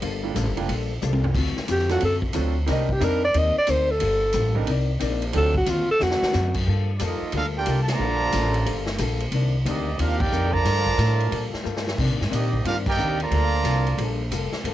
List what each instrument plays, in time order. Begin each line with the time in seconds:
0.01 upright bass G1, hollow-body jazz guitar G3 A#3 F4 A4, ride
0.23 upright piano G3 A#3 D4 F4 A4
0.35 upright bass A1, hollow-body jazz guitar G3 A#3 F4 A4, hi-hat pedal, ride
0.46 upright bass G1
0.57 upright bass F1, upright piano G3 A#3 D4 F4 G4, ride
0.68 upright bass A#1, hollow-body jazz guitar G3 A#3 F4 A4, ride
1.02 upright bass C2, hollow-body jazz guitar G3 A#3 F4 A4, hi-hat pedal
1.13 high tom
1.24 floor tom
1.35 upright bass D2, hollow-body jazz guitar D3 C4 F4 F#4, kick, crash
1.46 snare
1.57 muted upright bass stroke, snare
1.67 upright bass F2, hollow-body jazz guitar D3 C4 F4 F#4, hi-hat pedal, ride
1.71 alto saxophone G4
1.79 snare
1.89 upright piano F#3 C4 D4 F4 A4, alto saxophone F#4, snare, ride
2.00 upright bass F#2, hollow-body jazz guitar D3 C4 F4 F#4, ride
2.05 alto saxophone A4
2.22 kick
2.33 upright bass D2, hollow-body jazz guitar D3 C4 F4 F#4, upright piano F#3 C4 D4 F4 A4, hi-hat pedal, ride
2.66 upright bass C2, upright piano G3 C4 D4 D#4 A#4, hollow-body jazz guitar C4 D#4 A#4, snare, ride
2.70 alto saxophone D#4, hollow-body jazz guitar D5
2.89 alto saxophone G4, kick
3.00 upright bass F2, upright piano G3 C4 D4 D#4 A#4, hollow-body jazz guitar C4 D#4 A#4 D5, hi-hat pedal, ride
3.04 alto saxophone A#4
3.24 alto saxophone D5
3.34 upright bass D#2, hollow-body jazz guitar C4 D#4 A#4 D5, alto saxophone D#5, ride
3.58 alto saxophone D5
3.67 upright bass D2, hollow-body jazz guitar C4 D#4 A#4 D5, alto saxophone C5, hi-hat pedal, ride
3.91 alto saxophone A4
3.99 upright bass G1, hollow-body jazz guitar G3 A#3 F4 A4, ride
4.32 upright bass A1, hollow-body jazz guitar G3 A#3 F4 A4, hi-hat pedal, ride
4.55 upright piano G3 C4 D4 D#4 A#4, kick
4.67 upright bass C2, hollow-body jazz guitar C4 D#4 A#4, ride
4.71 hollow-body jazz guitar D5
5.00 upright bass A#1, hollow-body jazz guitar C4 D#4 A#4 D5, hi-hat pedal, ride
5.22 ride
5.33 upright bass D2, hollow-body jazz guitar D3 C4 F4, upright piano F#3 C4 D4 F4 A4, ride
5.37 hollow-body jazz guitar F#4, alto saxophone A4
5.55 alto saxophone F#4, kick
5.66 upright bass D#2, hollow-body jazz guitar D3 C4 F4 F#4, hi-hat pedal, ride
5.70 alto saxophone F4
5.89 alto saxophone A4, muted upright bass stroke
5.99 upright bass F2, hollow-body jazz guitar D3 C4 F4 F#4, alto saxophone F#4, snare
6.11 snare
6.22 muted upright bass stroke, snare
6.32 upright bass F#2, hollow-body jazz guitar D3 C4 F4 F#4, snare, hi-hat pedal
6.54 kick, crash
6.66 upright bass G2, hollow-body jazz guitar G3 A#3 F4 A4
6.98 upright bass F2, hollow-body jazz guitar G3 A#3 F4, trumpet section D5, hi-hat pedal, ride
7.03 trombone section F3 A#3 D#4, trumpet section A#3 F4 A4 D#5, hollow-body jazz guitar A4
7.21 muted upright bass stroke
7.32 upright bass D2, hollow-body jazz guitar G3 A#3 F4, trombone section A#3 D4 F4, ride
7.36 trumpet section D4 A4 A#4 F5, hollow-body jazz guitar A4
7.56 trombone section A#3 D4 G4, trumpet section F4 A#4 D5 G5
7.66 upright bass C2, hollow-body jazz guitar G3 A#3 F4 A4, hi-hat pedal, ride
7.82 trumpet section A5
7.88 trombone section D3 F3 A#3, trumpet section F4 A5, snare, ride
7.92 trumpet section D5 A#5
7.99 upright bass A#1, hollow-body jazz guitar G3 A#3 F4 A4
8.32 upright bass A1, hollow-body jazz guitar G3 A#3 F4 A4, hi-hat pedal, ride
8.54 ride
8.65 upright bass G1, hollow-body jazz guitar G3 A#3 F4 A4, ride
8.86 snare
8.98 upright bass A#1, hollow-body jazz guitar G3 A#3 F4 A4, hi-hat pedal, ride
9.20 ride
9.31 upright bass C2, hollow-body jazz guitar C3 D#3 A#3 D4, ride
9.65 upright bass D2, hollow-body jazz guitar C3 D#3 A#3 D4, trombone section G3 A#3 D#4, trumpet section A#3 G4 D5 D#5, hi-hat pedal, ride
9.98 upright bass D#2, hollow-body jazz guitar C3 D#3 A#3 D4, trumpet section D4 G4 A#4 F5, trombone section F4, ride
10.19 trombone section A#3 D#4 G4, trumpet section D#4 A#4 D5 G5, kick, crash
10.32 upright bass F2, hollow-body jazz guitar C3 D#3 A#3 D4, hi-hat pedal
10.50 trombone section D3 F3 A#4, trumpet section F4 D5 A5 A#5, kick
10.64 upright bass G2, hollow-body jazz guitar G3 A#3 F4 A4, snare, ride
10.86 kick
10.98 upright bass A2, hollow-body jazz guitar G3 A#3 F4 A4, hi-hat pedal, ride
11.20 ride
11.31 upright bass A#2, hollow-body jazz guitar G3 A#3 F4 A4, ride
11.54 muted upright bass stroke, snare
11.64 upright bass G2, hollow-body jazz guitar G3 A#3 F4 A4, hi-hat pedal
11.77 snare
11.88 snare
11.98 hollow-body jazz guitar C3 D#3 A#3 D4, upright bass C3, kick, crash
12.10 upright bass A#2
12.21 upright bass G2, snare
12.30 upright bass A#2, hollow-body jazz guitar C3 D#3 A#3 D4, trombone section G3 A#3 D#4, trumpet section A#3, hi-hat pedal, ride
12.34 trumpet section G4 D5 D#5
12.53 kick
12.64 upright bass G2, hollow-body jazz guitar C3 D#3 A#3 D4, trumpet section D4 G4 A#4 F5, trombone section F4, ride
12.86 trombone section A#3 D#4 G4, trumpet section D#4 A#4 D5 G5, kick, crash
12.97 upright bass D#2, hollow-body jazz guitar C3 D#3 A#3 D4, hi-hat pedal
13.20 trombone section D3 F3 A#3, trumpet section F4 D5 A5 A#5, ride
13.31 upright bass D2, hollow-body jazz guitar G3 A#3 F4 A4, ride
13.64 upright bass C2, hollow-body jazz guitar G3 A#3 F4 A4, hi-hat pedal, ride
13.87 ride
13.98 upright bass A#1, hollow-body jazz guitar G3 A#3 F4, ride
14.02 hollow-body jazz guitar A4
14.31 upright bass F1, hollow-body jazz guitar G3 A#3 F4, hi-hat pedal, ride
14.35 hollow-body jazz guitar A4
14.52 muted upright bass stroke, snare
14.64 upright bass G1, hollow-body jazz guitar G3 A#3 F4 A4, ride